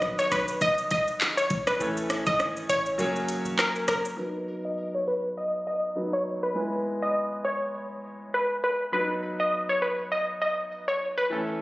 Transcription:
Already playing: A#1 D#3 F#3 B3 F#4 B4
0.02 cross-stick, shaker
0.19 C#5, shaker
0.32 B1 B4, cross-stick, closed hi-hat, shaker
0.48 shaker
0.61 D#5, kick, shaker
0.78 shaker
0.91 D#5, kick, closed hi-hat, shaker
1.08 shaker
1.21 clap, shaker
1.37 C#5, shaker
1.50 B1, kick, closed hi-hat, shaker
1.67 B4, cross-stick, shaker
1.79 A1 E3 A3 C#4 A4 C#5, shaker
1.97 shaker
2.10 cross-stick, closed hi-hat, shaker
2.27 G#1 D#5, kick, shaker
2.40 cross-stick, shaker
2.57 shaker
2.69 A1 C#5, closed hi-hat, shaker
2.86 shaker
2.98 F#1 F#3 A#3 C#4 G#4 C#5, shaker
3.16 shaker
3.29 closed hi-hat, shaker
3.45 E1, shaker
3.59 A#4, cross-stick, clap, shaker
3.76 shaker
3.88 F#1 A#4, cross-stick, closed hi-hat, shaker
4.05 shaker
4.17 F#3 B3 D#4 B4
4.65 D#5
4.95 C#5
5.08 B4
5.37 D#5
5.67 D#5
5.96 F#3 B3 D#4 B4
6.13 C#5
6.43 B4
6.54 G#3 B3 E4 B4
7.02 D#5
7.45 C#5
8.34 B4
8.64 B4
8.92 F#3 B3 D#4 B4
9.40 D#5
9.69 C#5
9.82 B4
10.12 D#5
10.42 D#5
10.88 C#5
11.18 B4
11.30 E3 A3 C#4 A4

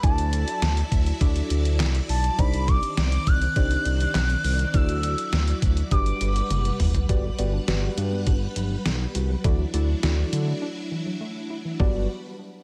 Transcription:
0.03 D2 F#3 D4 E4 F#4 A4 D5 A5, kick, closed hi-hat
0.18 closed hi-hat
0.33 closed hi-hat
0.48 closed hi-hat
0.62 D2, snare, closed hi-hat
0.77 closed hi-hat
0.92 D2, kick, closed hi-hat
1.06 closed hi-hat
1.21 D2 D4 E4 F#4 A4 D5, kick, closed hi-hat
1.36 closed hi-hat
1.50 D2, closed hi-hat
1.65 closed hi-hat
1.80 C2, snare, clap, closed hi-hat
1.95 closed hi-hat
2.09 B1 A5, open hi-hat
2.24 closed hi-hat
2.38 C2 D#3 C4 D4 D#4 G4 C5 D5 B5, kick, closed hi-hat
2.54 closed hi-hat
2.68 D6, kick, closed hi-hat
2.83 closed hi-hat
2.97 C2 D6, snare, closed hi-hat
3.12 closed hi-hat
3.27 C2 F#6, kick, closed hi-hat
3.42 closed hi-hat
3.56 C2 D4 D#4 G4 C5 D5, kick, closed hi-hat
3.71 closed hi-hat
3.85 C2, closed hi-hat
4.00 closed hi-hat
4.15 B1, snare, clap, closed hi-hat
4.30 closed hi-hat
4.44 C2, open hi-hat
4.59 closed hi-hat
4.74 D2 F#3 D4 E4 F#4 A4 D5 E6, kick, closed hi-hat
4.89 closed hi-hat
5.03 closed hi-hat
5.18 closed hi-hat
5.33 D2, snare, closed hi-hat
5.48 closed hi-hat
5.62 D2, kick, closed hi-hat
5.77 closed hi-hat
5.91 G1 G3 D4 F#4 G4 B4 D5 F#5 D6, kick, closed hi-hat
6.06 closed hi-hat
6.21 G1, closed hi-hat
6.36 closed hi-hat
6.50 F#1, closed hi-hat, high tom
6.65 closed hi-hat
6.80 F#1, mid tom, open hi-hat
6.94 closed hi-hat, floor tom
7.09 G1 F#3 G3 F#4 G4 B4 D5 F#5, kick, closed hi-hat
7.24 G3
7.38 G1 B3 F#4 G4 B4 D5, closed hi-hat
7.53 D4
7.68 G1 F#4 G4 B4 D5, snare, closed hi-hat
7.83 F#3
7.97 G2 G3, closed hi-hat
8.12 B3
8.27 G1 D4, kick, closed hi-hat
8.56 G1 F#3, closed hi-hat
8.71 G3
8.85 B1 B3, snare, closed hi-hat
9.15 C2 F#4, closed hi-hat
9.30 F#3
9.44 D2 E3 F#3 D4 E4 F#4 A4 D5, kick, closed hi-hat
9.59 F#3
9.74 D2 A3 E4 F#4 A4 D5, closed hi-hat
9.89 D4
10.03 D2 E4 F#4 A4 D5, snare, closed hi-hat
10.18 E3
10.33 D3 F#3, closed hi-hat
10.47 A3
10.62 D4
10.91 E3
11.06 F#3
11.21 A3
11.50 E4
11.65 E3
11.80 G1 F#3 G3 B3 D4 F#4 G4 B4 D5, kick

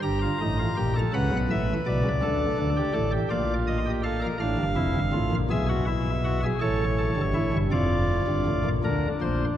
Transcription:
0.02 G1 G2 G4 A#5
0.22 F4
0.41 A1 A2 D#4
0.59 F4
0.77 A#1 A#2 G4
0.95 A4
1.13 C#2 C#3 B4 F#5
1.32 B1 B2
1.50 A1 A2 E5
1.86 B1 B2 D5
2.04 C#2 C#3
2.22 D2 D3 A4
2.58 D2 D3
2.77 G4
2.94 A1 A2 A4
3.12 G4
3.30 A#1 A#2 F4 D5
3.67 D#5
3.86 G4
4.03 A4 F5
4.22 A#4
4.40 A1 A2 D4 F5
4.58 G1 G2
4.76 F1 F2 E4
4.95 G1 G2
5.13 A1 A2 F4
5.32 A#1 A#2
5.50 B1 B2 G#4 E5
5.69 F#4
5.87 E4
6.24 F#4
6.43 G#4
6.61 A1 A2 A4 C#5
6.98 A4
7.16 G1 G2
7.34 A1 A2 E4
7.53 G1 G2
7.72 F1 F2 F4 D5
8.28 G1 G2
8.47 A1 A2
8.65 A#1 A#2
8.84 D2 D3 D4 A#4
9.21 A#1 A#2 C5

